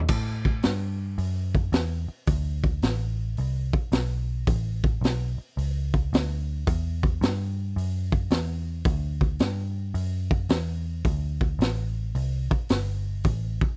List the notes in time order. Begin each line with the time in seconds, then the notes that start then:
0.08 A2, kick, crash
0.45 kick
0.62 G2, snare, open hi-hat
1.18 F#2, open hi-hat
1.55 kick
1.72 E2, snare, open hi-hat
2.08 muted picked electric bass stroke
2.27 D2, kick, open hi-hat
2.64 kick
2.82 A1, snare, open hi-hat
3.37 C2, open hi-hat
3.73 muted picked electric bass stroke, kick
3.92 B1, snare, open hi-hat
4.47 A1, kick, open hi-hat
4.84 kick
5.01 B1, snare, open hi-hat
5.38 muted picked electric bass stroke
5.57 C#2, open hi-hat
5.94 kick
6.13 D2, snare, open hi-hat
6.67 E2, kick, open hi-hat
7.03 kick
7.21 G2, snare, open hi-hat
7.76 F#2, open hi-hat
8.12 kick
8.30 E2, snare, open hi-hat
8.84 D2, kick, open hi-hat
9.21 kick
9.39 G2, snare, open hi-hat
9.94 F#2, open hi-hat
10.31 kick
10.49 E2, snare, open hi-hat
11.05 D2, kick, open hi-hat
11.41 kick
11.59 A1, snare, open hi-hat
12.15 C2, open hi-hat
12.50 muted picked electric bass stroke, kick
12.69 G1, snare, open hi-hat
13.24 A1, kick, open hi-hat
13.61 muted picked electric bass stroke, kick